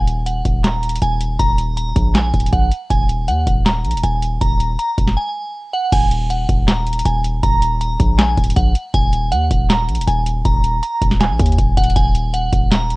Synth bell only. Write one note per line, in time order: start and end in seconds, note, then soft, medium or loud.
0.00 0.24 G#5 medium
0.26 0.62 F#5 medium
0.64 0.99 A#5 medium
1.02 1.16 G#5 medium
1.39 1.75 A#5 loud
1.77 2.13 A#5 medium
2.15 2.50 G#5 medium
2.53 2.67 F#5 medium
2.90 3.26 G#5 medium
3.28 3.64 F#5 medium
3.66 4.01 A#5 medium
4.04 4.18 G#5 medium
4.41 4.77 A#5 loud
4.79 5.14 A#5 medium
5.17 5.70 G#5 medium
5.73 5.88 F#5 medium
5.92 6.28 G#5 loud
6.30 6.65 F#5 medium
6.68 7.03 A#5 medium
7.05 7.20 G#5 medium
7.43 7.79 A#5 loud
7.81 8.16 A#5 medium
8.18 8.54 G#5 medium
8.56 8.71 F#5 medium
8.94 9.29 G#5 loud
9.32 9.67 F#5 medium
9.69 10.05 A#5 medium
10.07 10.22 G#5 medium
10.45 10.81 A#5 loud
10.83 11.18 A#5 medium
11.21 11.74 G#5 medium
11.77 11.92 F#5 medium
11.96 12.31 G#5 loud
12.34 12.69 F#5 medium
12.71 12.96 A#5 medium